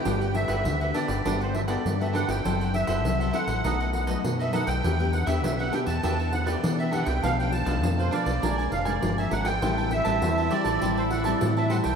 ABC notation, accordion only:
X:1
M:4/4
L:1/16
Q:1/4=100
K:G
V:1 name="Accordion"
g2 e4 d3 c e d2 e f g- | g2 e4 f4 f ^d2 e f g- | g2 f e2 f g a3 f d2 e f g | =f g a3 c d4 f d2 e ^f g- |
g2 e4 d3 c f d2 e f g |]